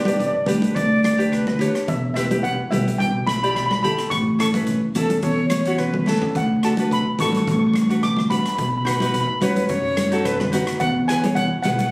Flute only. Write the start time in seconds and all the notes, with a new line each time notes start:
0.46 B4
0.75 D5
1.04 D5
1.32 B4
4.95 A4
5.22 C#5
5.49 C#5
5.79 B4
9.41 B4
9.68 C#5
10.25 B4